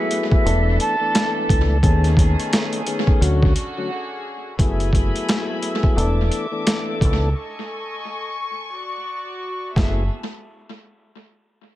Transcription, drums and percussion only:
0, 0, Header, 1, 2, 480
1, 0, Start_track
1, 0, Key_signature, 3, "minor"
1, 0, Tempo, 689655
1, 1275, Time_signature, 4, 2, 24, 8
1, 8181, End_track
2, 0, Start_track
2, 0, Title_t, "Drums"
2, 75, Note_on_c, 9, 42, 80
2, 144, Note_off_c, 9, 42, 0
2, 219, Note_on_c, 9, 36, 104
2, 289, Note_off_c, 9, 36, 0
2, 324, Note_on_c, 9, 42, 91
2, 394, Note_off_c, 9, 42, 0
2, 556, Note_on_c, 9, 42, 74
2, 626, Note_off_c, 9, 42, 0
2, 800, Note_on_c, 9, 42, 111
2, 802, Note_on_c, 9, 38, 117
2, 869, Note_off_c, 9, 42, 0
2, 872, Note_off_c, 9, 38, 0
2, 1040, Note_on_c, 9, 36, 104
2, 1045, Note_on_c, 9, 42, 78
2, 1110, Note_off_c, 9, 36, 0
2, 1115, Note_off_c, 9, 42, 0
2, 1274, Note_on_c, 9, 36, 116
2, 1278, Note_on_c, 9, 42, 89
2, 1343, Note_off_c, 9, 36, 0
2, 1347, Note_off_c, 9, 42, 0
2, 1421, Note_on_c, 9, 42, 55
2, 1491, Note_off_c, 9, 42, 0
2, 1509, Note_on_c, 9, 36, 96
2, 1523, Note_on_c, 9, 42, 73
2, 1578, Note_off_c, 9, 36, 0
2, 1592, Note_off_c, 9, 42, 0
2, 1667, Note_on_c, 9, 42, 63
2, 1737, Note_off_c, 9, 42, 0
2, 1759, Note_on_c, 9, 42, 97
2, 1763, Note_on_c, 9, 38, 120
2, 1828, Note_off_c, 9, 42, 0
2, 1833, Note_off_c, 9, 38, 0
2, 1897, Note_on_c, 9, 42, 60
2, 1967, Note_off_c, 9, 42, 0
2, 1994, Note_on_c, 9, 42, 80
2, 2064, Note_off_c, 9, 42, 0
2, 2139, Note_on_c, 9, 36, 100
2, 2208, Note_off_c, 9, 36, 0
2, 2243, Note_on_c, 9, 42, 90
2, 2312, Note_off_c, 9, 42, 0
2, 2384, Note_on_c, 9, 36, 101
2, 2454, Note_off_c, 9, 36, 0
2, 2476, Note_on_c, 9, 42, 77
2, 2545, Note_off_c, 9, 42, 0
2, 3194, Note_on_c, 9, 36, 110
2, 3198, Note_on_c, 9, 42, 88
2, 3263, Note_off_c, 9, 36, 0
2, 3267, Note_off_c, 9, 42, 0
2, 3341, Note_on_c, 9, 42, 52
2, 3411, Note_off_c, 9, 42, 0
2, 3429, Note_on_c, 9, 36, 96
2, 3443, Note_on_c, 9, 42, 72
2, 3499, Note_off_c, 9, 36, 0
2, 3513, Note_off_c, 9, 42, 0
2, 3588, Note_on_c, 9, 42, 62
2, 3658, Note_off_c, 9, 42, 0
2, 3679, Note_on_c, 9, 42, 94
2, 3683, Note_on_c, 9, 38, 114
2, 3748, Note_off_c, 9, 42, 0
2, 3753, Note_off_c, 9, 38, 0
2, 3915, Note_on_c, 9, 42, 80
2, 3985, Note_off_c, 9, 42, 0
2, 4059, Note_on_c, 9, 36, 97
2, 4129, Note_off_c, 9, 36, 0
2, 4163, Note_on_c, 9, 42, 87
2, 4232, Note_off_c, 9, 42, 0
2, 4395, Note_on_c, 9, 42, 75
2, 4465, Note_off_c, 9, 42, 0
2, 4640, Note_on_c, 9, 42, 106
2, 4643, Note_on_c, 9, 38, 117
2, 4710, Note_off_c, 9, 42, 0
2, 4712, Note_off_c, 9, 38, 0
2, 4880, Note_on_c, 9, 36, 100
2, 4885, Note_on_c, 9, 42, 74
2, 4950, Note_off_c, 9, 36, 0
2, 4955, Note_off_c, 9, 42, 0
2, 6795, Note_on_c, 9, 36, 108
2, 6803, Note_on_c, 9, 38, 86
2, 6865, Note_off_c, 9, 36, 0
2, 6873, Note_off_c, 9, 38, 0
2, 8181, End_track
0, 0, End_of_file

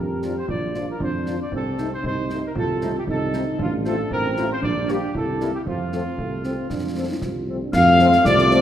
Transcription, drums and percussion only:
0, 0, Header, 1, 2, 480
1, 0, Start_track
1, 0, Tempo, 517688
1, 451, Time_signature, 2, 2, 24, 8
1, 7987, End_track
2, 0, Start_track
2, 0, Title_t, "Drums"
2, 207, Note_on_c, 9, 38, 31
2, 300, Note_off_c, 9, 38, 0
2, 448, Note_on_c, 9, 35, 64
2, 541, Note_off_c, 9, 35, 0
2, 691, Note_on_c, 9, 38, 27
2, 784, Note_off_c, 9, 38, 0
2, 929, Note_on_c, 9, 35, 69
2, 1022, Note_off_c, 9, 35, 0
2, 1170, Note_on_c, 9, 38, 32
2, 1263, Note_off_c, 9, 38, 0
2, 1407, Note_on_c, 9, 35, 58
2, 1500, Note_off_c, 9, 35, 0
2, 1650, Note_on_c, 9, 38, 29
2, 1743, Note_off_c, 9, 38, 0
2, 1890, Note_on_c, 9, 35, 62
2, 1982, Note_off_c, 9, 35, 0
2, 2131, Note_on_c, 9, 38, 30
2, 2224, Note_off_c, 9, 38, 0
2, 2368, Note_on_c, 9, 35, 69
2, 2460, Note_off_c, 9, 35, 0
2, 2609, Note_on_c, 9, 38, 31
2, 2702, Note_off_c, 9, 38, 0
2, 2850, Note_on_c, 9, 35, 63
2, 2943, Note_off_c, 9, 35, 0
2, 3089, Note_on_c, 9, 38, 35
2, 3182, Note_off_c, 9, 38, 0
2, 3329, Note_on_c, 9, 35, 70
2, 3422, Note_off_c, 9, 35, 0
2, 3570, Note_on_c, 9, 38, 30
2, 3663, Note_off_c, 9, 38, 0
2, 3807, Note_on_c, 9, 35, 67
2, 3900, Note_off_c, 9, 35, 0
2, 4050, Note_on_c, 9, 38, 33
2, 4143, Note_off_c, 9, 38, 0
2, 4288, Note_on_c, 9, 35, 70
2, 4381, Note_off_c, 9, 35, 0
2, 4530, Note_on_c, 9, 38, 29
2, 4623, Note_off_c, 9, 38, 0
2, 4771, Note_on_c, 9, 35, 68
2, 4864, Note_off_c, 9, 35, 0
2, 5013, Note_on_c, 9, 38, 31
2, 5106, Note_off_c, 9, 38, 0
2, 5253, Note_on_c, 9, 35, 58
2, 5346, Note_off_c, 9, 35, 0
2, 5492, Note_on_c, 9, 38, 29
2, 5585, Note_off_c, 9, 38, 0
2, 5732, Note_on_c, 9, 35, 61
2, 5825, Note_off_c, 9, 35, 0
2, 5970, Note_on_c, 9, 38, 30
2, 6063, Note_off_c, 9, 38, 0
2, 6212, Note_on_c, 9, 35, 57
2, 6212, Note_on_c, 9, 38, 48
2, 6304, Note_off_c, 9, 35, 0
2, 6304, Note_off_c, 9, 38, 0
2, 6691, Note_on_c, 9, 35, 60
2, 6691, Note_on_c, 9, 38, 42
2, 6784, Note_off_c, 9, 35, 0
2, 6784, Note_off_c, 9, 38, 0
2, 7169, Note_on_c, 9, 35, 89
2, 7169, Note_on_c, 9, 38, 74
2, 7169, Note_on_c, 9, 49, 63
2, 7262, Note_off_c, 9, 35, 0
2, 7262, Note_off_c, 9, 38, 0
2, 7262, Note_off_c, 9, 49, 0
2, 7409, Note_on_c, 9, 38, 58
2, 7502, Note_off_c, 9, 38, 0
2, 7532, Note_on_c, 9, 38, 65
2, 7625, Note_off_c, 9, 38, 0
2, 7651, Note_on_c, 9, 35, 90
2, 7651, Note_on_c, 9, 38, 86
2, 7743, Note_off_c, 9, 35, 0
2, 7743, Note_off_c, 9, 38, 0
2, 7773, Note_on_c, 9, 38, 60
2, 7866, Note_off_c, 9, 38, 0
2, 7891, Note_on_c, 9, 38, 57
2, 7984, Note_off_c, 9, 38, 0
2, 7987, End_track
0, 0, End_of_file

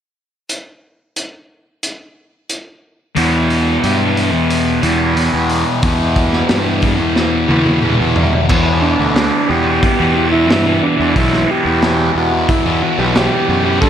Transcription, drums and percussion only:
0, 0, Header, 1, 2, 480
1, 0, Start_track
1, 0, Key_signature, 1, "minor"
1, 0, Tempo, 665927
1, 360, Time_signature, 4, 2, 24, 8
1, 10016, End_track
2, 0, Start_track
2, 0, Title_t, "Drums"
2, 356, Note_on_c, 9, 42, 53
2, 428, Note_off_c, 9, 42, 0
2, 839, Note_on_c, 9, 42, 44
2, 911, Note_off_c, 9, 42, 0
2, 1319, Note_on_c, 9, 42, 49
2, 1391, Note_off_c, 9, 42, 0
2, 1799, Note_on_c, 9, 42, 47
2, 1871, Note_off_c, 9, 42, 0
2, 2281, Note_on_c, 9, 46, 60
2, 2353, Note_off_c, 9, 46, 0
2, 2524, Note_on_c, 9, 46, 42
2, 2597, Note_off_c, 9, 46, 0
2, 2765, Note_on_c, 9, 46, 55
2, 2837, Note_off_c, 9, 46, 0
2, 3007, Note_on_c, 9, 46, 46
2, 3079, Note_off_c, 9, 46, 0
2, 3246, Note_on_c, 9, 46, 60
2, 3318, Note_off_c, 9, 46, 0
2, 3481, Note_on_c, 9, 46, 48
2, 3553, Note_off_c, 9, 46, 0
2, 3725, Note_on_c, 9, 46, 57
2, 3797, Note_off_c, 9, 46, 0
2, 3960, Note_on_c, 9, 46, 48
2, 4032, Note_off_c, 9, 46, 0
2, 4199, Note_on_c, 9, 46, 65
2, 4202, Note_on_c, 9, 36, 99
2, 4272, Note_off_c, 9, 46, 0
2, 4274, Note_off_c, 9, 36, 0
2, 4439, Note_on_c, 9, 46, 42
2, 4442, Note_on_c, 9, 36, 70
2, 4511, Note_off_c, 9, 46, 0
2, 4514, Note_off_c, 9, 36, 0
2, 4562, Note_on_c, 9, 38, 27
2, 4634, Note_off_c, 9, 38, 0
2, 4678, Note_on_c, 9, 46, 53
2, 4681, Note_on_c, 9, 38, 94
2, 4750, Note_off_c, 9, 46, 0
2, 4753, Note_off_c, 9, 38, 0
2, 4916, Note_on_c, 9, 46, 44
2, 4921, Note_on_c, 9, 36, 72
2, 4988, Note_off_c, 9, 46, 0
2, 4993, Note_off_c, 9, 36, 0
2, 5162, Note_on_c, 9, 38, 52
2, 5234, Note_off_c, 9, 38, 0
2, 5395, Note_on_c, 9, 48, 55
2, 5467, Note_off_c, 9, 48, 0
2, 5520, Note_on_c, 9, 48, 55
2, 5593, Note_off_c, 9, 48, 0
2, 5639, Note_on_c, 9, 47, 59
2, 5711, Note_off_c, 9, 47, 0
2, 5881, Note_on_c, 9, 43, 80
2, 5953, Note_off_c, 9, 43, 0
2, 6004, Note_on_c, 9, 43, 71
2, 6076, Note_off_c, 9, 43, 0
2, 6123, Note_on_c, 9, 36, 108
2, 6124, Note_on_c, 9, 49, 80
2, 6195, Note_off_c, 9, 36, 0
2, 6196, Note_off_c, 9, 49, 0
2, 6602, Note_on_c, 9, 46, 44
2, 6605, Note_on_c, 9, 38, 86
2, 6674, Note_off_c, 9, 46, 0
2, 6677, Note_off_c, 9, 38, 0
2, 7084, Note_on_c, 9, 36, 101
2, 7085, Note_on_c, 9, 46, 51
2, 7156, Note_off_c, 9, 36, 0
2, 7157, Note_off_c, 9, 46, 0
2, 7570, Note_on_c, 9, 46, 46
2, 7573, Note_on_c, 9, 38, 97
2, 7642, Note_off_c, 9, 46, 0
2, 7645, Note_off_c, 9, 38, 0
2, 8044, Note_on_c, 9, 36, 101
2, 8046, Note_on_c, 9, 46, 49
2, 8116, Note_off_c, 9, 36, 0
2, 8118, Note_off_c, 9, 46, 0
2, 8167, Note_on_c, 9, 38, 27
2, 8239, Note_off_c, 9, 38, 0
2, 8522, Note_on_c, 9, 46, 37
2, 8525, Note_on_c, 9, 38, 88
2, 8594, Note_off_c, 9, 46, 0
2, 8597, Note_off_c, 9, 38, 0
2, 9001, Note_on_c, 9, 46, 46
2, 9002, Note_on_c, 9, 36, 96
2, 9073, Note_off_c, 9, 46, 0
2, 9074, Note_off_c, 9, 36, 0
2, 9481, Note_on_c, 9, 46, 42
2, 9484, Note_on_c, 9, 38, 95
2, 9553, Note_off_c, 9, 46, 0
2, 9556, Note_off_c, 9, 38, 0
2, 9960, Note_on_c, 9, 36, 110
2, 9965, Note_on_c, 9, 46, 43
2, 10016, Note_off_c, 9, 36, 0
2, 10016, Note_off_c, 9, 46, 0
2, 10016, End_track
0, 0, End_of_file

